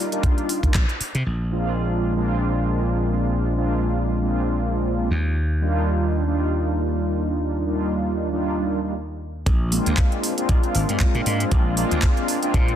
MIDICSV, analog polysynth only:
0, 0, Header, 1, 2, 480
1, 0, Start_track
1, 0, Tempo, 512821
1, 1179, Time_signature, 4, 2, 24, 8
1, 11942, End_track
2, 0, Start_track
2, 0, Title_t, "Analog polysynth"
2, 0, Program_c, 0, 90
2, 108, Note_on_c, 0, 55, 94
2, 111, Note_on_c, 0, 58, 86
2, 113, Note_on_c, 0, 62, 89
2, 115, Note_on_c, 0, 63, 85
2, 118, Note_on_c, 0, 65, 104
2, 564, Note_off_c, 0, 55, 0
2, 565, Note_off_c, 0, 58, 0
2, 566, Note_off_c, 0, 62, 0
2, 567, Note_off_c, 0, 63, 0
2, 569, Note_off_c, 0, 65, 0
2, 588, Note_on_c, 0, 55, 81
2, 590, Note_on_c, 0, 58, 72
2, 593, Note_on_c, 0, 62, 72
2, 595, Note_on_c, 0, 63, 72
2, 597, Note_on_c, 0, 65, 87
2, 682, Note_off_c, 0, 55, 0
2, 683, Note_off_c, 0, 58, 0
2, 684, Note_off_c, 0, 62, 0
2, 685, Note_off_c, 0, 63, 0
2, 686, Note_off_c, 0, 65, 0
2, 1407, Note_on_c, 0, 56, 89
2, 1411, Note_on_c, 0, 58, 82
2, 1416, Note_on_c, 0, 60, 79
2, 1421, Note_on_c, 0, 62, 81
2, 1425, Note_on_c, 0, 65, 99
2, 1994, Note_off_c, 0, 56, 0
2, 1997, Note_off_c, 0, 58, 0
2, 1999, Note_off_c, 0, 60, 0
2, 2001, Note_off_c, 0, 62, 0
2, 2004, Note_off_c, 0, 65, 0
2, 2020, Note_on_c, 0, 56, 91
2, 2023, Note_on_c, 0, 58, 82
2, 2029, Note_on_c, 0, 60, 80
2, 2034, Note_on_c, 0, 62, 82
2, 2037, Note_on_c, 0, 65, 94
2, 3307, Note_off_c, 0, 56, 0
2, 3309, Note_off_c, 0, 58, 0
2, 3312, Note_off_c, 0, 60, 0
2, 3314, Note_off_c, 0, 62, 0
2, 3316, Note_off_c, 0, 65, 0
2, 3328, Note_on_c, 0, 56, 87
2, 3331, Note_on_c, 0, 58, 81
2, 3337, Note_on_c, 0, 60, 78
2, 3341, Note_on_c, 0, 62, 84
2, 3346, Note_on_c, 0, 65, 96
2, 3915, Note_off_c, 0, 56, 0
2, 3917, Note_off_c, 0, 58, 0
2, 3920, Note_off_c, 0, 60, 0
2, 3922, Note_off_c, 0, 62, 0
2, 3924, Note_off_c, 0, 65, 0
2, 3942, Note_on_c, 0, 56, 86
2, 3948, Note_on_c, 0, 58, 82
2, 3952, Note_on_c, 0, 60, 83
2, 3956, Note_on_c, 0, 62, 80
2, 3961, Note_on_c, 0, 65, 96
2, 4761, Note_off_c, 0, 56, 0
2, 4764, Note_off_c, 0, 58, 0
2, 4766, Note_off_c, 0, 60, 0
2, 4768, Note_off_c, 0, 62, 0
2, 4771, Note_off_c, 0, 65, 0
2, 5248, Note_on_c, 0, 55, 90
2, 5252, Note_on_c, 0, 58, 82
2, 5257, Note_on_c, 0, 62, 84
2, 5262, Note_on_c, 0, 63, 80
2, 5266, Note_on_c, 0, 65, 101
2, 5835, Note_off_c, 0, 55, 0
2, 5837, Note_off_c, 0, 58, 0
2, 5840, Note_off_c, 0, 62, 0
2, 5842, Note_off_c, 0, 63, 0
2, 5844, Note_off_c, 0, 65, 0
2, 5860, Note_on_c, 0, 55, 86
2, 5865, Note_on_c, 0, 58, 83
2, 5869, Note_on_c, 0, 62, 81
2, 5874, Note_on_c, 0, 63, 81
2, 5880, Note_on_c, 0, 65, 98
2, 7147, Note_off_c, 0, 55, 0
2, 7150, Note_off_c, 0, 58, 0
2, 7152, Note_off_c, 0, 62, 0
2, 7155, Note_off_c, 0, 63, 0
2, 7157, Note_off_c, 0, 65, 0
2, 7168, Note_on_c, 0, 55, 89
2, 7172, Note_on_c, 0, 58, 81
2, 7178, Note_on_c, 0, 62, 81
2, 7182, Note_on_c, 0, 63, 83
2, 7186, Note_on_c, 0, 65, 98
2, 7755, Note_off_c, 0, 55, 0
2, 7757, Note_off_c, 0, 58, 0
2, 7760, Note_off_c, 0, 62, 0
2, 7762, Note_off_c, 0, 63, 0
2, 7764, Note_off_c, 0, 65, 0
2, 7787, Note_on_c, 0, 55, 90
2, 7789, Note_on_c, 0, 58, 85
2, 7792, Note_on_c, 0, 62, 83
2, 7794, Note_on_c, 0, 63, 81
2, 7797, Note_on_c, 0, 65, 99
2, 8243, Note_off_c, 0, 55, 0
2, 8244, Note_off_c, 0, 58, 0
2, 8246, Note_off_c, 0, 62, 0
2, 8247, Note_off_c, 0, 63, 0
2, 8248, Note_off_c, 0, 65, 0
2, 8267, Note_on_c, 0, 55, 76
2, 8270, Note_on_c, 0, 58, 71
2, 8272, Note_on_c, 0, 62, 68
2, 8275, Note_on_c, 0, 63, 72
2, 8277, Note_on_c, 0, 65, 83
2, 8361, Note_off_c, 0, 55, 0
2, 8363, Note_off_c, 0, 58, 0
2, 8364, Note_off_c, 0, 62, 0
2, 8365, Note_off_c, 0, 63, 0
2, 8366, Note_off_c, 0, 65, 0
2, 9090, Note_on_c, 0, 56, 96
2, 9095, Note_on_c, 0, 58, 89
2, 9099, Note_on_c, 0, 60, 86
2, 9104, Note_on_c, 0, 62, 84
2, 9110, Note_on_c, 0, 65, 105
2, 9676, Note_off_c, 0, 56, 0
2, 9679, Note_off_c, 0, 58, 0
2, 9681, Note_off_c, 0, 60, 0
2, 9683, Note_off_c, 0, 62, 0
2, 9686, Note_off_c, 0, 65, 0
2, 9704, Note_on_c, 0, 56, 96
2, 9708, Note_on_c, 0, 58, 86
2, 9712, Note_on_c, 0, 60, 88
2, 9717, Note_on_c, 0, 62, 85
2, 9721, Note_on_c, 0, 65, 104
2, 10989, Note_off_c, 0, 56, 0
2, 10992, Note_off_c, 0, 58, 0
2, 10994, Note_off_c, 0, 60, 0
2, 10996, Note_off_c, 0, 62, 0
2, 10998, Note_off_c, 0, 65, 0
2, 11008, Note_on_c, 0, 56, 92
2, 11013, Note_on_c, 0, 58, 91
2, 11019, Note_on_c, 0, 60, 87
2, 11023, Note_on_c, 0, 62, 91
2, 11028, Note_on_c, 0, 65, 107
2, 11595, Note_off_c, 0, 56, 0
2, 11598, Note_off_c, 0, 58, 0
2, 11600, Note_off_c, 0, 60, 0
2, 11603, Note_off_c, 0, 62, 0
2, 11605, Note_off_c, 0, 65, 0
2, 11624, Note_on_c, 0, 56, 98
2, 11629, Note_on_c, 0, 58, 88
2, 11634, Note_on_c, 0, 60, 91
2, 11638, Note_on_c, 0, 62, 89
2, 11643, Note_on_c, 0, 65, 105
2, 11942, Note_off_c, 0, 56, 0
2, 11942, Note_off_c, 0, 58, 0
2, 11942, Note_off_c, 0, 60, 0
2, 11942, Note_off_c, 0, 62, 0
2, 11942, Note_off_c, 0, 65, 0
2, 11942, End_track
0, 0, End_of_file